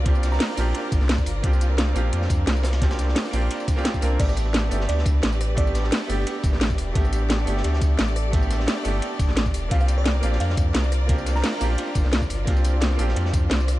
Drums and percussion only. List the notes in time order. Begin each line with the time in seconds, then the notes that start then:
0.06 kick, closed hi-hat, ride
0.15 cross-stick, tambourine
0.23 snare, closed hi-hat, ride, tambourine
0.32 cross-stick, snare
0.40 snare, closed hi-hat, open hi-hat
0.49 cross-stick
0.57 open hi-hat, ride, tambourine
0.74 closed hi-hat, ride
0.92 kick, closed hi-hat, ride, tambourine
1.01 snare
1.09 snare, closed hi-hat, ride
1.18 kick, tambourine
1.26 open hi-hat, ride, tambourine
1.43 kick, closed hi-hat, ride
1.53 cross-stick, tambourine
1.61 closed hi-hat, ride, tambourine
1.70 cross-stick
1.78 snare, closed hi-hat, ride
1.88 cross-stick
1.96 open hi-hat, ride, tambourine
2.13 closed hi-hat, ride
2.22 snare
2.30 kick, closed hi-hat, ride, tambourine
2.47 snare, closed hi-hat, ride
2.56 tambourine
2.63 cross-stick, snare, open hi-hat, ride, tambourine
2.73 snare, ride
2.82 kick, snare, closed hi-hat, ride
2.91 cross-stick, snare, ride, tambourine
2.99 snare, closed hi-hat, ride, tambourine
3.08 cross-stick, snare
3.15 snare, closed hi-hat, open hi-hat
3.25 cross-stick, tambourine
3.33 open hi-hat, ride, tambourine
3.51 closed hi-hat, ride
3.60 tambourine
3.68 kick, closed hi-hat, ride, tambourine
3.77 snare
3.85 snare, closed hi-hat, ride
3.94 kick, tambourine
4.02 open hi-hat, ride, tambourine
4.20 kick, closed hi-hat, ride, crash
4.29 cross-stick, tambourine
4.36 closed hi-hat, ride, tambourine
4.46 cross-stick
4.53 snare, closed hi-hat, ride
4.63 cross-stick
4.71 open hi-hat, ride, tambourine
4.80 snare
4.89 closed hi-hat, ride
4.98 snare
5.05 kick, closed hi-hat, ride, tambourine
5.23 snare, closed hi-hat, ride
5.32 tambourine
5.41 cross-stick, open hi-hat, ride, tambourine
5.57 kick, closed hi-hat, ride
5.67 cross-stick, tambourine
5.75 snare, closed hi-hat, ride, tambourine
5.84 cross-stick, snare
5.92 snare, closed hi-hat, open hi-hat
6.01 cross-stick
6.09 open hi-hat, ride, tambourine
6.27 closed hi-hat, ride
6.43 kick, closed hi-hat, ride, tambourine
6.53 snare
6.61 snare, closed hi-hat, ride
6.70 kick, tambourine
6.78 open hi-hat, ride, tambourine
6.95 kick, closed hi-hat, ride
7.05 cross-stick, tambourine
7.13 closed hi-hat, ride, tambourine
7.22 cross-stick
7.30 snare, closed hi-hat, ride
7.39 cross-stick
7.47 open hi-hat, ride, tambourine
7.57 snare
7.64 closed hi-hat, ride
7.73 snare
7.81 kick, closed hi-hat, ride, tambourine
7.99 snare, closed hi-hat, ride
8.08 tambourine
8.16 cross-stick, open hi-hat, tambourine
8.33 kick, closed hi-hat, ride
8.42 cross-stick, tambourine
8.50 snare, closed hi-hat, ride, tambourine
8.60 cross-stick, snare
8.68 snare, closed hi-hat, open hi-hat
8.77 cross-stick
8.85 open hi-hat, ride, tambourine
9.02 closed hi-hat, ride
9.19 kick, closed hi-hat, ride, tambourine
9.29 snare
9.37 snare, closed hi-hat, ride
9.46 kick, tambourine
9.54 open hi-hat, ride, tambourine
9.71 kick, closed hi-hat, ride
9.80 cross-stick, tambourine
9.88 closed hi-hat, ride, tambourine
9.98 cross-stick
10.06 snare, closed hi-hat, ride
10.15 cross-stick
10.23 open hi-hat, ride, tambourine
10.32 snare
10.40 closed hi-hat, ride
10.50 snare
10.57 kick, closed hi-hat, ride, tambourine
10.74 snare, closed hi-hat, ride
10.84 tambourine
10.92 cross-stick, open hi-hat, ride, tambourine
11.09 kick, closed hi-hat, ride
11.18 cross-stick, tambourine
11.26 snare, closed hi-hat, ride, tambourine
11.35 cross-stick, snare
11.44 snare, closed hi-hat, open hi-hat
11.53 cross-stick
11.61 open hi-hat, ride, tambourine
11.78 closed hi-hat, ride
11.95 kick, closed hi-hat, ride, tambourine
12.05 snare
12.12 snare, closed hi-hat, ride
12.22 kick, tambourine
12.30 open hi-hat, ride, tambourine
12.47 kick, closed hi-hat, ride
12.56 cross-stick, tambourine
12.64 closed hi-hat, ride, tambourine
12.74 cross-stick
12.81 snare, closed hi-hat, ride
12.91 cross-stick
12.99 open hi-hat, ride, tambourine
13.08 snare
13.16 closed hi-hat, ride
13.26 snare
13.34 kick, closed hi-hat, ride, tambourine
13.50 snare, closed hi-hat, ride
13.60 tambourine
13.68 cross-stick, open hi-hat, ride, tambourine